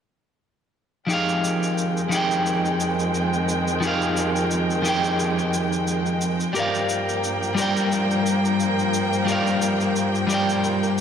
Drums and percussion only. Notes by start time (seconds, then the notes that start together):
1.10 cabasa
1.29 cabasa
1.44 cabasa
1.63 cabasa
1.78 cabasa
1.97 cabasa
2.12 cabasa
2.31 cabasa
2.46 cabasa
2.65 cabasa
2.80 cabasa
2.99 cabasa
3.14 cabasa
3.33 cabasa
3.49 cabasa
3.68 cabasa
3.83 cabasa
4.02 cabasa
4.17 cabasa
4.36 cabasa
4.51 cabasa
4.70 cabasa
4.85 cabasa
5.04 cabasa
5.20 cabasa
5.39 cabasa
5.54 cabasa
5.73 cabasa
5.87 cabasa
6.06 cabasa
6.21 cabasa
6.40 cabasa
6.55 cabasa
6.75 cabasa
6.89 cabasa
7.09 cabasa
7.24 cabasa
7.43 cabasa
7.58 cabasa
7.77 cabasa
7.92 cabasa
8.11 cabasa
8.26 cabasa
8.45 cabasa
8.60 cabasa
8.79 cabasa
8.94 cabasa
9.13 cabasa
9.28 cabasa
9.47 cabasa
9.62 cabasa
9.81 cabasa
9.96 cabasa
10.15 cabasa
10.30 cabasa
10.49 cabasa
10.64 cabasa
10.83 cabasa